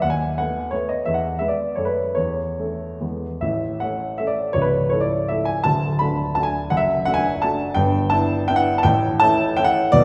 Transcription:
0.02 0.37 D#2 medium
0.02 0.11 F#5 medium
0.10 0.37 G#5 medium
0.38 0.70 A3 soft
0.38 0.71 B3 soft
0.38 0.71 B4 soft
0.38 0.73 F#5 medium
0.71 1.03 A3 soft
0.71 1.04 B3 soft
0.71 1.03 B4 soft
0.71 0.89 C#5 medium
0.89 1.06 D#5 medium
1.05 1.40 E2 medium
1.05 1.14 E5 medium
1.14 1.41 F#5 medium
1.39 1.74 G#3 soft
1.39 1.74 B3 soft
1.39 1.75 B4 soft
1.39 1.49 E5 medium
1.48 1.77 D5 medium
1.75 2.16 F#2 soft
1.75 2.13 A3 soft
1.75 2.13 C#4 soft
1.75 2.13 A4 soft
1.75 1.86 C#5 medium
1.85 2.16 B4 medium
2.15 2.58 E2 medium
2.15 3.01 C#5 medium
2.59 2.98 A3 soft
2.59 2.99 C#4 soft
2.59 2.99 A4 soft
3.00 3.41 E2 soft
3.00 3.38 G#3 soft
3.00 3.38 B3 soft
3.00 3.39 B4 soft
3.41 4.52 A1 medium
3.41 4.52 A2 medium
3.41 3.82 E5 medium
3.80 4.16 A3 soft
3.80 4.17 C#4 soft
3.80 4.17 A4 soft
3.80 4.20 F#5 medium
4.18 4.51 A3 soft
4.18 4.51 C#4 soft
4.18 4.52 A4 soft
4.18 4.28 E5 medium
4.27 4.54 D5 medium
4.53 5.60 C#1 medium
4.53 5.60 C#2 medium
4.53 4.63 C#5 medium
4.62 4.91 B4 medium
4.90 5.26 A3 soft
4.90 5.26 E4 soft
4.90 5.26 A4 soft
4.90 5.00 C#5 medium
5.01 5.29 D5 medium
5.28 5.61 A3 soft
5.28 5.61 E4 soft
5.28 5.61 A4 soft
5.28 5.46 E5 medium
5.45 5.63 G#5 medium
5.64 6.68 D1 medium
5.64 6.68 D2 medium
5.64 6.00 A5 loud
5.99 6.33 A3 soft
5.99 6.33 D4 soft
5.99 6.34 F#4 soft
5.99 6.36 B5 medium
6.35 6.67 A3 soft
6.35 6.68 D4 soft
6.35 6.68 F#4 soft
6.35 6.45 A5 medium
6.43 6.70 G#5 medium
6.70 7.72 F#1 medium
6.70 7.72 F#2 medium
6.70 6.79 F#5 loud
6.77 7.05 E5 loud
7.05 7.38 A3 soft
7.05 7.39 D4 medium
7.05 7.39 F#4 medium
7.05 7.15 F#5 loud
7.14 7.41 G#5 loud
7.42 7.73 A3 medium
7.42 7.73 D4 soft
7.42 7.73 F#4 medium
7.42 7.75 A5 loud
7.74 8.81 G1 medium
7.74 8.81 G2 medium
7.74 8.11 G5 loud
8.10 8.45 B3 medium
8.10 8.46 D4 medium
8.10 8.45 E4 medium
8.10 8.48 A5 loud
8.48 8.81 B3 medium
8.48 8.81 D4 medium
8.48 8.81 E4 medium
8.48 8.57 G5 loud
8.56 8.77 F#5 loud
8.78 8.84 A5 loud
8.83 9.90 A1 medium
8.83 9.90 A2 medium
8.83 9.19 G5 loud
9.20 9.55 A3 medium
9.20 9.54 C#4 medium
9.20 9.55 E4 medium
9.20 9.57 A5 loud
9.57 9.90 A3 medium
9.57 9.90 C#4 medium
9.57 9.90 E4 medium
9.57 9.66 G5 loud
9.64 9.92 F#5 loud
9.92 10.04 B1 medium
9.92 10.04 B2 medium
9.92 10.04 D5 loud

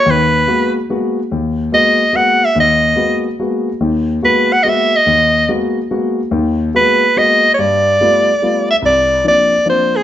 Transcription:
0.00 0.12 C#5 medium
0.06 0.42 D#2 medium
0.06 0.42 D#3 medium
0.10 0.77 B4 medium
0.47 0.76 G#3 medium
0.47 0.76 A#3 medium
0.47 0.77 B3 medium
0.47 0.77 F#4 medium
0.90 1.18 G#3 medium
0.90 1.19 A#3 medium
0.90 1.19 B3 medium
0.90 1.19 F#4 medium
1.32 1.67 D#2 medium
1.72 2.01 G#3 medium
1.72 2.01 A#3 medium
1.72 2.02 B3 medium
1.72 2.02 F#4 medium
1.72 2.17 D#5 medium
2.13 2.43 G#3 medium
2.13 2.42 A#3 medium
2.13 2.42 B3 soft
2.13 2.43 F#4 medium
2.13 2.47 F#5 medium
2.45 2.58 E5 medium
2.56 2.92 D#2 medium
2.60 3.23 D#5 medium
2.96 3.26 G#3 medium
2.96 3.26 A#3 medium
2.96 3.26 B3 medium
2.96 3.26 F#4 medium
3.39 3.68 G#3 medium
3.39 3.68 A#3 medium
3.39 3.68 B3 soft
3.39 3.69 F#4 medium
3.81 4.17 D#2 medium
3.81 4.17 D#3 medium
4.22 4.52 G#3 medium
4.22 4.52 A#3 medium
4.22 4.52 B3 medium
4.22 4.52 F#4 medium
4.22 4.54 B4 medium
4.53 4.64 F#5 loud
4.63 4.93 G#3 medium
4.63 4.94 A#3 medium
4.63 4.94 B3 soft
4.63 4.94 F#4 medium
4.63 4.70 D#5 medium
4.68 4.98 E5 medium
4.96 5.50 D#5 medium
5.06 5.43 D#2 medium
5.49 5.77 G#3 medium
5.49 5.77 A#3 medium
5.49 5.77 B3 medium
5.49 5.78 F#4 medium
5.91 6.19 G#3 medium
5.91 6.20 A#3 medium
5.91 6.19 B3 soft
5.91 6.20 F#4 medium
6.31 6.68 D#2 medium
6.31 6.68 D#3 medium
6.74 7.03 G#3 medium
6.74 7.03 A#3 medium
6.74 7.03 B3 medium
6.74 7.03 F#4 medium
6.74 7.20 B4 medium
7.16 7.45 G#3 medium
7.16 7.45 A#3 medium
7.16 7.45 B3 soft
7.16 7.45 F#4 medium
7.16 7.53 D#5 loud
7.54 7.61 C#5 medium
7.59 7.94 G2 medium
7.59 8.70 D5 loud
8.01 8.29 G3 medium
8.01 8.29 A3 medium
8.01 8.29 B3 medium
8.01 8.29 F4 medium
8.42 8.71 G3 medium
8.42 8.71 A3 soft
8.42 8.71 B3 soft
8.42 8.71 F4 medium
8.70 8.76 E5 medium
8.82 9.19 C2 medium
8.82 9.23 D5 medium
9.24 9.53 F3 medium
9.24 9.54 A#3 soft
9.24 9.54 C4 soft
9.24 9.54 D4 medium
9.24 9.65 D5 loud
9.65 9.95 F3 soft
9.65 9.95 A#3 soft
9.65 9.95 C4 medium
9.65 9.95 D4 medium
9.70 9.98 C5 medium
9.96 10.03 G#4 medium

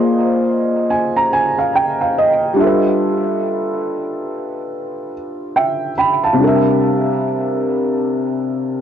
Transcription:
0.00 2.51 A#3 medium
0.00 2.53 F4 medium
0.00 2.55 G#4 medium
0.00 2.57 C5 medium
0.00 2.60 D5 soft
0.00 2.17 D#5 medium
0.00 1.58 F5 medium
0.90 1.14 G#5 medium
1.16 1.31 A#5 medium
1.33 1.56 G#5 medium
1.58 1.73 F5 medium
1.75 1.99 G5 medium
2.01 2.16 F5 medium
2.18 2.57 D#5 medium
2.54 5.90 G3 medium
2.54 5.91 D4 medium
2.59 5.93 F4 medium
2.59 5.94 A4 medium
2.59 2.66 E5 medium
2.64 5.96 B4 medium
2.64 5.12 E5 medium
5.56 5.96 E5 medium
5.56 5.95 G5 medium
5.98 6.22 G5 medium
5.98 6.22 B5 medium
6.24 6.63 F5 soft
6.24 6.63 A5 medium
6.33 8.81 C3 medium
6.33 8.81 G3 medium
6.40 8.81 D4 medium
6.40 8.81 A#4 medium
6.47 8.81 E5 medium

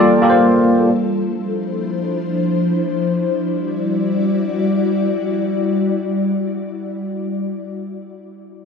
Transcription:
0.00 0.85 G3 medium
0.00 0.22 A#3 medium
0.00 0.87 A#3 medium
0.00 0.22 F4 medium
0.00 0.87 F4 medium
0.00 0.23 G4 medium
0.00 0.23 A4 medium
0.00 0.87 A4 medium
0.00 0.91 D5 loud
0.00 0.91 F5 medium
0.22 0.76 A#3 medium
0.22 0.76 F4 medium
0.22 0.77 G4 medium
0.22 0.77 A4 medium
0.22 0.29 A#4 medium
0.30 0.80 C5 medium
0.88 3.03 F3 medium
0.88 3.03 D4 medium
0.88 3.03 E4 medium
0.88 3.03 C5 medium
3.05 7.21 G3 medium
3.05 7.20 E4 medium
3.05 7.21 F#4 medium
3.05 7.20 D5 medium

